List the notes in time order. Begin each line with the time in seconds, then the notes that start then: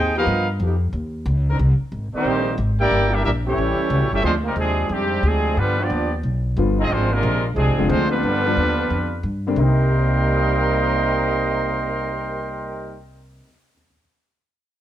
Already playing: D#2 C4 D#4 G#4 C5 G5
0.16 F3 B3 D#4 F4 G4 A#4 B4 F5
0.26 G2
0.60 F2 F3 B3 D#4 G4
0.93 D#2
1.26 C#2
1.49 D#3 C4 D4 A#4
1.59 C2
1.80 muted upright bass stroke
1.92 G#1
2.13 D#3 G3 A#3 C4 D#4 G4 A#4 C5 D5, muted upright bass stroke
2.24 A#1
2.58 G#1
2.79 A#3 D4 E4 G4 A#4 D5 G5
2.91 G1
3.11 G3 A#3 D4 E4 G4 A#4 E5
3.25 A#1 G3 A#3 D4 E4 G4 A#4 E5
3.45 E3 G3 A3 C#4 E4 G4 C#5
3.58 A1
3.79 muted upright bass stroke
3.90 C#2 E3 A3 C#4 F#4
4.01 A1
4.12 G1 G3 C#4 E4 G4 A4 E5
4.23 D2 F3 G#3 C4 D4 F4 C5
4.43 G3 A#3 C4 D#4 A#4
4.55 D#2 C3 F3 G#3 C4 G#4
4.59 D4
4.89 F2 G#2 C3 G3 C4 D4 G4
5.23 D2 C3 F3 G#3 C4 D4 G#4
5.57 G2 D3 F3 G3 B3 D4 F4 B4
5.80 F3 B3 D4 F4 G4 D5
5.90 D#2
6.23 B1
6.57 G1 D3 F3 G3 B3 F4
6.79 C4 D#4 F4 G#4 D#5
6.90 G#1 F3 G#3 C4 D4 F4 C5
7.12 C3 F3 G#3 A#3 D4 F4 A#4
7.23 A#1
7.55 C2 C3 F3 G#3 C4 D4 G#4
7.67 G#1
7.77 F1 D3 F3 G#3 C4 F4
7.88 D2 F3 G#3 C4 D4 F4 C5
8.08 D3 F3 G3 B3 D4 F4 B4
8.23 G2
8.45 D3 F3 G3 B3 F4
8.57 D#2
8.90 F2
9.23 G2
9.47 D3 G3 A#3 C4 D4
9.56 C2 C3 G3 A#3 C4 D#4 A#4 D#5 G5 C6
9.60 D#4
9.91 G4
9.99 C5
10.06 D#5
10.16 G5
10.26 C6
10.37 D#6
10.48 G6